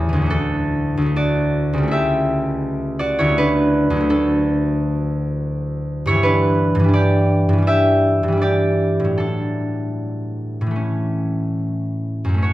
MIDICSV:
0, 0, Header, 1, 2, 480
1, 0, Start_track
1, 0, Key_signature, 2, "major"
1, 0, Tempo, 834492
1, 182, Time_signature, 4, 2, 24, 8
1, 666, Tempo, 762389
1, 1146, Tempo, 725514
1, 3066, Tempo, 705053
1, 4506, Tempo, 727273
1, 5466, Tempo, 775194
1, 5946, Tempo, 809717
1, 7940, End_track
2, 0, Start_track
2, 0, Title_t, "Harp"
2, 0, Program_c, 0, 46
2, 0, Note_on_c, 0, 33, 65
2, 0, Note_on_c, 0, 40, 50
2, 0, Note_on_c, 0, 61, 55
2, 0, Note_on_c, 0, 64, 52
2, 0, Note_on_c, 0, 69, 57
2, 0, Note_on_c, 0, 73, 57
2, 0, Note_on_c, 0, 76, 68
2, 51, Note_on_c, 0, 52, 53
2, 74, Note_on_c, 0, 38, 55
2, 94, Note_on_c, 0, 54, 47
2, 125, Note_on_c, 0, 57, 48
2, 148, Note_on_c, 0, 66, 46
2, 168, Note_off_c, 0, 69, 0
2, 175, Note_on_c, 0, 69, 78
2, 185, Note_on_c, 0, 62, 58
2, 193, Note_off_c, 0, 52, 0
2, 194, Note_off_c, 0, 40, 0
2, 195, Note_off_c, 0, 61, 0
2, 196, Note_off_c, 0, 76, 0
2, 198, Note_off_c, 0, 64, 0
2, 199, Note_off_c, 0, 33, 0
2, 199, Note_off_c, 0, 73, 0
2, 553, Note_off_c, 0, 38, 0
2, 560, Note_on_c, 0, 38, 56
2, 579, Note_off_c, 0, 54, 0
2, 586, Note_on_c, 0, 54, 45
2, 603, Note_off_c, 0, 57, 0
2, 610, Note_on_c, 0, 57, 48
2, 663, Note_off_c, 0, 66, 0
2, 669, Note_on_c, 0, 66, 61
2, 671, Note_on_c, 0, 74, 84
2, 1029, Note_on_c, 0, 37, 55
2, 1057, Note_on_c, 0, 55, 49
2, 1081, Note_off_c, 0, 57, 0
2, 1089, Note_on_c, 0, 57, 48
2, 1106, Note_off_c, 0, 38, 0
2, 1118, Note_on_c, 0, 64, 51
2, 1121, Note_off_c, 0, 54, 0
2, 1142, Note_on_c, 0, 76, 87
2, 1152, Note_on_c, 0, 67, 65
2, 1167, Note_off_c, 0, 62, 0
2, 1167, Note_off_c, 0, 74, 0
2, 1168, Note_off_c, 0, 66, 0
2, 1856, Note_on_c, 0, 74, 89
2, 1861, Note_on_c, 0, 66, 66
2, 1979, Note_off_c, 0, 64, 0
2, 1984, Note_on_c, 0, 73, 82
2, 1987, Note_on_c, 0, 64, 63
2, 1994, Note_on_c, 0, 38, 57
2, 2022, Note_on_c, 0, 54, 50
2, 2045, Note_off_c, 0, 57, 0
2, 2052, Note_on_c, 0, 57, 47
2, 2057, Note_off_c, 0, 37, 0
2, 2072, Note_off_c, 0, 55, 0
2, 2111, Note_on_c, 0, 71, 92
2, 2117, Note_off_c, 0, 76, 0
2, 2121, Note_off_c, 0, 67, 0
2, 2121, Note_on_c, 0, 62, 73
2, 2123, Note_off_c, 0, 64, 0
2, 2186, Note_off_c, 0, 73, 0
2, 2449, Note_off_c, 0, 38, 0
2, 2457, Note_on_c, 0, 38, 63
2, 2488, Note_off_c, 0, 54, 0
2, 2496, Note_on_c, 0, 54, 48
2, 2517, Note_off_c, 0, 57, 0
2, 2525, Note_on_c, 0, 57, 53
2, 2578, Note_off_c, 0, 69, 0
2, 2580, Note_off_c, 0, 62, 0
2, 2586, Note_on_c, 0, 62, 55
2, 2588, Note_on_c, 0, 69, 79
2, 2927, Note_off_c, 0, 71, 0
2, 3906, Note_on_c, 0, 43, 62
2, 3916, Note_on_c, 0, 73, 91
2, 3922, Note_on_c, 0, 64, 69
2, 3941, Note_on_c, 0, 52, 52
2, 3967, Note_on_c, 0, 55, 50
2, 3987, Note_off_c, 0, 38, 0
2, 4007, Note_off_c, 0, 54, 0
2, 4022, Note_off_c, 0, 57, 0
2, 4025, Note_on_c, 0, 71, 88
2, 4030, Note_off_c, 0, 62, 0
2, 4038, Note_on_c, 0, 62, 69
2, 4052, Note_off_c, 0, 66, 0
2, 4053, Note_off_c, 0, 69, 0
2, 4117, Note_off_c, 0, 73, 0
2, 4369, Note_off_c, 0, 43, 0
2, 4377, Note_on_c, 0, 43, 65
2, 4401, Note_off_c, 0, 52, 0
2, 4409, Note_on_c, 0, 52, 51
2, 4431, Note_off_c, 0, 55, 0
2, 4439, Note_on_c, 0, 55, 50
2, 4462, Note_off_c, 0, 62, 0
2, 4470, Note_on_c, 0, 62, 48
2, 4476, Note_off_c, 0, 74, 0
2, 4505, Note_on_c, 0, 74, 92
2, 4516, Note_on_c, 0, 67, 68
2, 4861, Note_off_c, 0, 43, 0
2, 4869, Note_on_c, 0, 43, 59
2, 4889, Note_off_c, 0, 52, 0
2, 4897, Note_on_c, 0, 52, 49
2, 4923, Note_off_c, 0, 55, 0
2, 4931, Note_on_c, 0, 55, 49
2, 4950, Note_off_c, 0, 62, 0
2, 4958, Note_on_c, 0, 62, 48
2, 4986, Note_off_c, 0, 67, 0
2, 4990, Note_on_c, 0, 76, 94
2, 4994, Note_on_c, 0, 67, 75
2, 5352, Note_off_c, 0, 43, 0
2, 5359, Note_on_c, 0, 43, 55
2, 5384, Note_off_c, 0, 52, 0
2, 5392, Note_on_c, 0, 52, 45
2, 5413, Note_off_c, 0, 55, 0
2, 5420, Note_on_c, 0, 55, 46
2, 5446, Note_off_c, 0, 62, 0
2, 5454, Note_on_c, 0, 62, 46
2, 5473, Note_off_c, 0, 74, 0
2, 5479, Note_off_c, 0, 67, 0
2, 5480, Note_on_c, 0, 74, 84
2, 5486, Note_on_c, 0, 67, 65
2, 5840, Note_on_c, 0, 45, 48
2, 5870, Note_on_c, 0, 54, 41
2, 5916, Note_off_c, 0, 43, 0
2, 5931, Note_off_c, 0, 52, 0
2, 5944, Note_off_c, 0, 55, 0
2, 5951, Note_on_c, 0, 69, 66
2, 5957, Note_off_c, 0, 62, 0
2, 5961, Note_off_c, 0, 71, 0
2, 5964, Note_on_c, 0, 62, 51
2, 5968, Note_off_c, 0, 64, 0
2, 5970, Note_off_c, 0, 76, 0
2, 5975, Note_off_c, 0, 67, 0
2, 6794, Note_off_c, 0, 45, 0
2, 6801, Note_on_c, 0, 45, 48
2, 6834, Note_on_c, 0, 52, 39
2, 6860, Note_on_c, 0, 57, 39
2, 6887, Note_off_c, 0, 54, 0
2, 6888, Note_on_c, 0, 61, 40
2, 6931, Note_off_c, 0, 74, 0
2, 7646, Note_off_c, 0, 62, 0
2, 7771, Note_on_c, 0, 42, 46
2, 7797, Note_on_c, 0, 54, 39
2, 7820, Note_off_c, 0, 57, 0
2, 7827, Note_on_c, 0, 57, 39
2, 7837, Note_off_c, 0, 45, 0
2, 7841, Note_off_c, 0, 61, 0
2, 7848, Note_on_c, 0, 61, 38
2, 7854, Note_off_c, 0, 52, 0
2, 7877, Note_on_c, 0, 73, 66
2, 7884, Note_on_c, 0, 66, 47
2, 7940, Note_off_c, 0, 42, 0
2, 7940, Note_off_c, 0, 54, 0
2, 7940, Note_off_c, 0, 57, 0
2, 7940, Note_off_c, 0, 61, 0
2, 7940, Note_off_c, 0, 66, 0
2, 7940, Note_off_c, 0, 69, 0
2, 7940, Note_off_c, 0, 73, 0
2, 7940, End_track
0, 0, End_of_file